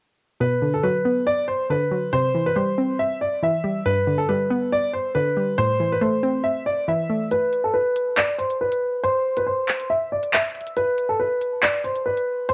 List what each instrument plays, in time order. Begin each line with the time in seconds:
0.40 synth pluck B2, grand piano B4
0.62 synth pluck D3
0.74 grand piano A4
0.83 synth pluck F#3, grand piano B4
1.05 synth pluck B3
1.27 grand piano D5
1.48 grand piano C5
1.70 synth pluck D3, grand piano B4
1.91 synth pluck F#3
2.13 synth pluck C3, grand piano C5
2.35 synth pluck E3
2.46 grand piano B4
2.56 synth pluck G3, grand piano C5
2.78 synth pluck C4
2.99 grand piano E5
3.21 grand piano D5
3.43 synth pluck E3, grand piano E5
3.64 synth pluck G3
3.86 synth pluck G2, grand piano B4
4.07 synth pluck D3
4.18 grand piano A4
4.29 synth pluck G3, grand piano B4
4.50 synth pluck B3
4.72 grand piano D5
4.93 grand piano C5
5.15 synth pluck D3, grand piano B4
5.37 synth pluck G3
5.58 synth pluck A2, grand piano C5
5.80 synth pluck E3
5.92 grand piano B4
6.01 synth pluck A3, grand piano C5
6.23 synth pluck C4
6.44 grand piano E5
6.66 grand piano D5
6.88 synth pluck E3, grand piano E5
7.10 synth pluck A3
7.31 grand piano B4, closed hi-hat
7.53 closed hi-hat
7.64 grand piano A4
7.74 grand piano B4
7.96 closed hi-hat
8.17 grand piano D5, clap
8.38 grand piano C5, closed hi-hat
8.50 closed hi-hat
8.61 grand piano B4
8.72 closed hi-hat
9.04 grand piano C5, closed hi-hat
9.37 grand piano B4, closed hi-hat
9.47 grand piano C5
9.69 clap
9.80 closed hi-hat
9.90 grand piano E5
10.12 grand piano D5
10.23 closed hi-hat
10.33 grand piano E5, clap
10.45 closed hi-hat
10.50 closed hi-hat
10.55 closed hi-hat
10.61 closed hi-hat
10.67 closed hi-hat
10.77 grand piano B4, closed hi-hat
10.98 closed hi-hat
11.09 grand piano A4
11.20 grand piano B4
11.41 closed hi-hat
11.63 grand piano D5, clap
11.84 grand piano C5, closed hi-hat
11.96 closed hi-hat
12.06 grand piano B4
12.17 closed hi-hat
12.49 grand piano C5, closed hi-hat